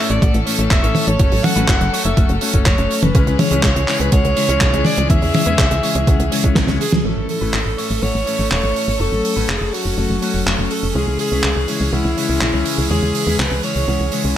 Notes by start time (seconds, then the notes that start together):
Already playing: E3 A3 C#4 E4 A4 C#5 E5
0.00 A2 A3 C#4
0.10 A1 D5, closed hi-hat
0.21 A1 A2 A3 C#4 E4 F#5, kick, closed hi-hat
0.34 A1, closed hi-hat
0.46 A2 A3 C#4 E4 C#5, open hi-hat
0.58 A1 A2 A3 C#4 E4 C#5, closed hi-hat
0.71 E1 E5, kick, clap, closed hi-hat
0.82 A1 A2 A3 C#4 E4 C#5, closed hi-hat
0.95 open hi-hat, high tom
1.08 A1 C#5, closed hi-hat
1.19 F#1 F#3 A3 C#4 F#4 C#5, kick, closed hi-hat
1.32 A1, open hi-hat
1.44 F#5, open hi-hat, high tom
1.56 A1 A3 C#4 F#4 B4, closed hi-hat
1.68 F#1 F#5, kick, clap, closed hi-hat
1.81 F#1, closed hi-hat
1.92 A3 C#4 F#4 C#5, open hi-hat
2.04 F#1 E5, closed hi-hat
2.17 F#1 A3 C#4 F#4 F#5, kick, closed hi-hat
2.29 F#1, closed hi-hat
2.41 A3 C#4 F#4 C#5, open hi-hat
2.53 F#1 A3 C#4 F#4 C#5, kick, closed hi-hat
2.66 F#1 C#5, kick, clap, closed hi-hat
2.78 F#1 A3 C#4 F#4 C#5, closed hi-hat
2.91 open hi-hat
3.02 F#1 B4, closed hi-hat, high tom
3.14 C#2 C#3 E3 G#3 C#4 E4 G#4 C#5, kick, closed hi-hat
3.27 C#2, closed hi-hat
3.39 C#5, open hi-hat, high tom
3.51 C#2 C#3 G#3 C#4 E4 B4, closed hi-hat
3.63 C#2 C#5, kick, clap, closed hi-hat
3.76 C#2, closed hi-hat
3.87 C#3 G#3 C#4 E4 C#5, clap, open hi-hat
4.00 C#2 B4, closed hi-hat
4.12 C#2 C#3 G#3 C#4 E4 C#5 F#5, kick, closed hi-hat
4.25 C#2, closed hi-hat
4.36 C#3 G#3 C#4 E4 C#5, open hi-hat
4.48 C#2 C#3 G#3 C#4 E4 C#5, closed hi-hat
4.61 B1, kick, clap, closed hi-hat
4.73 C#2 C#3 G#3 C#4 E4 C#5, closed hi-hat
4.85 D5, open hi-hat, high tom
4.97 C#2, closed hi-hat
5.09 E2 C#3 G#3 C#4 E4 C#5 E5, kick, closed hi-hat
5.22 E2, open hi-hat
5.34 open hi-hat, high tom
5.46 E2 C#3 G#3 C#4 E4 B4, closed hi-hat
5.59 C#2, kick, clap, closed hi-hat
5.71 C#2, closed hi-hat
5.82 C#3 G#3 C#4 E4 C#5, open hi-hat
5.95 C#2, closed hi-hat
6.07 C#2 C#3 G#3 C#4 E4 F#5, kick, closed hi-hat
6.20 C#2, closed hi-hat
6.31 C#3 G#3 C#4 E4 C#5, open hi-hat
6.43 C#2 C#3 G#3 C#4 E4 C#5, kick, closed hi-hat
6.55 C#2, kick, snare, clap, closed hi-hat
6.67 C#2 C#3 G#3 C#4 E4 C#5, snare, closed hi-hat
6.81 G#4, open hi-hat
6.92 C#2, snare, closed hi-hat, high tom
7.04 A1 A2 E3 A3 C#4 E4 A4 C#5
7.17 A1
7.29 A4, open hi-hat
7.41 A1 A2 A3 C#4 E4 B4
7.54 A1, clap
7.66 A1
7.77 A2 A3 C#4 E4 C#5, open hi-hat
7.90 A1
8.02 A1 A2 A3 C#4 E4 C#5 F#5
8.15 A1
8.26 A2 A3 C#4 E4 C#5, open hi-hat
8.38 A1 A2 A3 C#4 E4 C#5
8.51 E1 C#5, clap
8.63 A1 A2 A3 C#4 E4 C#5
8.76 open hi-hat
8.88 A1
9.00 F#1 F#3 A3 C#4 F#4 A4 C#5
9.12 A1
9.25 open hi-hat
9.36 A1 A3 C#4 F#4 B4
9.49 F#1 G#4, clap
9.61 F#1
9.73 A3 C#4 F#4 C#5, open hi-hat
9.85 F#1
9.97 F#1 A3 C#4 F#4 F#5
10.10 F#1
10.22 A3 C#4 F#4 C#5, open hi-hat
10.34 F#1 A3 C#4 F#4 C#5
10.46 F#1, clap
10.58 F#1 A3 C#4 F#4 C#5
10.71 A4, open hi-hat
10.83 F#1
10.95 C#2 C#3 E3 G#3 C#4 E4 G#4 C#5
11.07 C#2
11.19 G#4, open hi-hat
11.31 C#2 C#3 G#3 C#4 E4 B4
11.44 C#2, clap
11.56 C#2
11.68 C#3 G#3 C#4 E4 C#5, open hi-hat
11.81 C#2
11.92 C#2 C#3 G#3 C#4 E4 F#5
12.05 C#2
12.17 C#3 G#3 C#4 E4 C#5, open hi-hat
12.29 C#2 C#3 G#3 C#4 E4 C#5
12.41 B1 E4, clap
12.53 C#2 C#3 G#3 C#4 E4 C#5
12.65 open hi-hat
12.78 C#2
12.90 E2 C#3 G#3 C#4 E4 G#4 C#5
13.03 E2
13.15 open hi-hat
13.26 E2 C#3 G#3 C#4 E4 B4
13.39 C#2 B4, clap
13.51 C#2
13.63 C#3 G#3 C#4 E4 C#5, open hi-hat
13.76 C#2
13.87 C#2 C#3 G#3 C#4 E4 F#5
14.00 C#2
14.12 C#3 G#3 C#4 E4 C#5, open hi-hat
14.24 C#2 C#3 G#3 C#4 E4 C#5